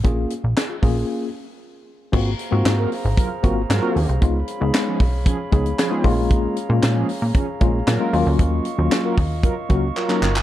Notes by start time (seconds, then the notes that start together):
0.04 A#1 A#3 C#4 F4 G#4, kick, closed hi-hat
0.30 closed hi-hat
0.44 A#1
0.57 snare, clap, closed hi-hat
0.69 F4 G#4
0.82 A#1 A#3 C#4 F4 G#4, kick, open hi-hat
2.12 G#1 A#3 C4 F4 F#4 G#4 C5 F5 A#5, kick, crash
2.39 closed hi-hat
2.51 G#2 A#3 C4 F4 F#4
2.65 G#2, snare, clap, closed hi-hat
2.78 F#3 F4 A#4
2.92 open hi-hat
3.05 G#1
3.17 F#3 F4 A#4, kick, closed hi-hat
3.43 G#1 F#3 A#3 C4 F4 F#4 A#4, kick, closed hi-hat
3.70 G#2 F#3 F4 A#4, snare, clap, closed hi-hat
3.82 A#3 C4 F4 F#4
3.96 D#2, open hi-hat
4.09 C2, closed hi-hat
4.21 C#2 G#3 B3 D#4 F4 G#4 C#5 F5 B5, kick, closed hi-hat
4.48 closed hi-hat
4.60 C#2 G#3 B3 D#4 G#4
4.74 snare, clap, closed hi-hat
4.87 F3 C#4 G#4
5.00 B1, kick, open hi-hat
5.26 F3 C#4 G#4, kick, closed hi-hat
5.52 C#2 F3 G#3 B3 C#4 D#4 G#4, kick, closed hi-hat
5.66 closed hi-hat
5.79 F3 C#4 G#4, snare, clap, closed hi-hat
5.91 G#3 B3 D#4 F4
6.04 A#1 G#3 A#3 C#4 F4 G#4 F5 A#5, kick, open hi-hat
6.31 kick, closed hi-hat
6.57 closed hi-hat
6.69 A#2 G#3 A#3 C#4 F4
6.82 A#2, snare, clap, closed hi-hat
6.96 F3 C#4 G#4
7.09 open hi-hat
7.22 A#2
7.35 F3 C#4 G#4, kick, closed hi-hat
7.61 A#1 F3 G#3 A#3 C#4 F4 G#4, kick, closed hi-hat
7.87 A#2 F#3 F4 A#4, snare, clap, closed hi-hat
8.00 G#3 A#3 C#4 F4
8.13 D#2 F#3 A#3 C#4 F4 D#5 C#6, open hi-hat
8.26 D2
8.39 D#2, kick, closed hi-hat
8.65 closed hi-hat
8.78 D#2 F#3 A#3 C#4 F4
8.91 snare, clap, closed hi-hat
9.04 F#3 F4 A#4
9.17 D#2, kick, open hi-hat
9.43 F#3 F4 A#4, kick, closed hi-hat
9.69 C#2 F#3 A#3 C#4 F4 F#4 A#4, kick, closed hi-hat
9.96 F#3 F4 A#4, clap
10.09 F#3 A#3 C#4 D#4, clap
10.22 G1, clap
10.36 clap